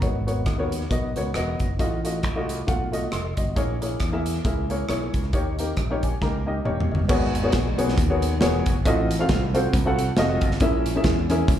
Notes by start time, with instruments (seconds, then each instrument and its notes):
0.02 fingered electric bass G#1, upright piano G#2 B3 F#4 A#4 C#5, kick, closed hi-hat
0.27 upright piano B3 F#4 A#4 C#5, closed hi-hat
0.46 fingered electric bass D#2, kick, cross-stick, closed hi-hat
0.58 upright piano B3 F#4 A#4 C#5
0.72 closed hi-hat
0.81 cross-stick
0.90 fingered electric bass B1, upright piano B3 F#4 A#4 D#5, kick, closed hi-hat
1.16 fingered electric bass C#2, upright piano B3 F#4 A#4 C#5, closed hi-hat
1.34 fingered electric bass E1, upright piano B3 F#4 A#4 D#5, cross-stick, closed hi-hat
1.60 fingered electric bass F#1, kick, closed hi-hat
1.79 fingered electric bass A1, upright piano A2 A3 F4 F#4 D#5, kick, closed hi-hat
2.04 upright piano A3 F4 F#4 D#5, closed hi-hat
2.23 fingered electric bass C2, kick, cross-stick, closed hi-hat
2.35 upright piano A3 F4 F#4 D#5
2.49 closed hi-hat
2.67 fingered electric bass B1, upright piano A3 F4 F#4 F#5, kick, closed hi-hat
2.92 upright piano A3 F4 F#4 D#5, closed hi-hat
3.12 fingered electric bass F1, upright piano D#5 C6, cross-stick, closed hi-hat
3.37 fingered electric bass G1, upright piano F#4 D#5, kick, closed hi-hat
3.56 fingered electric bass A#1, upright piano A#2 A#3 E4 G#4 C#5, kick, closed hi-hat
3.81 upright piano A#3 E4 G#4 C#5, closed hi-hat
4.00 fingered electric bass E2, kick, cross-stick, closed hi-hat
4.12 upright piano A#3 E4 G#4 E5
4.26 closed hi-hat
4.34 cross-stick
4.45 fingered electric bass C#2, upright piano A#3 E4 G#4 E5, kick, closed hi-hat
4.70 upright piano A#3 E4 G#4 C#5, closed hi-hat
4.88 fingered electric bass B1, upright piano A#3 E4 G#4 C#5, cross-stick, closed hi-hat
5.14 fingered electric bass C#2, kick, closed hi-hat
5.23 cross-stick
5.33 fingered electric bass D#2, upright piano D#3 A#3 D#4 G4 C#5, kick, closed hi-hat
5.59 upright piano A#3 D#4 G4 A#4, closed hi-hat
5.77 fingered electric bass A#1, kick, cross-stick, closed hi-hat
5.91 upright piano A#3 D#4 G4 C#5
6.03 upright piano G#5, kick, closed hi-hat
6.22 fingered electric bass C#2, upright piano A#3 D#4 G4 A#4 A#5, kick, snare
6.46 upright piano A#3 D#4 G4 D#5 G5
6.65 fingered electric bass E1, upright piano A#3 D#4 G4 C#5 D#5, mid tom
6.80 floor tom
6.91 fingered electric bass G1, upright piano D#5, floor tom
7.09 fingered electric bass G#1, upright piano G#2 B3 F#4 G#4 A#4 C#5, kick, crash
7.35 closed hi-hat
7.43 upright piano B3 F#4 G#4 A#4 C#5
7.52 fingered electric bass A#1, kick, snare, closed hi-hat
7.78 fingered electric bass B1, upright piano B3 F#4 G#4 A#4 C#5, closed hi-hat
7.88 snare
7.98 fingered electric bass D#2, kick, closed hi-hat
8.10 upright piano B3 F#4 G#4 A#4 C#5
8.22 closed hi-hat
8.41 fingered electric bass E1, upright piano B3 F#4 G#4 A#4 C#5, snare, closed hi-hat
8.66 fingered electric bass F#1, kick, closed hi-hat
8.85 fingered electric bass A1, upright piano A2 C4 F4 F#4 A4 D#5, kick, closed hi-hat
9.11 closed hi-hat
9.19 upright piano C4 F4 F#4 A4 F5
9.29 fingered electric bass C2, kick, snare, closed hi-hat
9.54 upright piano C4 F4 F#4 A4 C5, closed hi-hat
9.73 fingered electric bass C2, kick, closed hi-hat
9.85 upright piano C4 F4 F#4 A4 F#5
9.99 closed hi-hat
10.17 fingered electric bass F1, upright piano C4 F4 F#4 A4 D#5, snare, closed hi-hat
10.41 fingered electric bass G1, kick, closed hi-hat
10.51 snare
10.60 fingered electric bass A#1, upright piano A#2 C#4 E4 G#4 A#4 E5, kick, closed hi-hat
10.86 closed hi-hat
10.95 upright piano C#4 E4 G#4 A#4 E5
11.04 fingered electric bass E2, kick, snare, closed hi-hat
11.30 upright piano C#4 E4 G#4 A#4 E5, closed hi-hat
11.48 fingered electric bass C#2, kick, closed hi-hat